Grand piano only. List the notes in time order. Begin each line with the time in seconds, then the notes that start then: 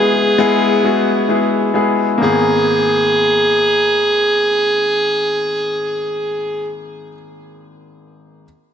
Already playing: E3 G#3 B3 E4 F#4 G#4 B4
0.38 G#3 B3 E4 G#4
0.84 G#3 B3 E4 F#4
1.29 G#3 B3 E4 G#4
1.74 G#3 B3 E4 G#4
2.18 G#1 A#3 B3
2.24 G#4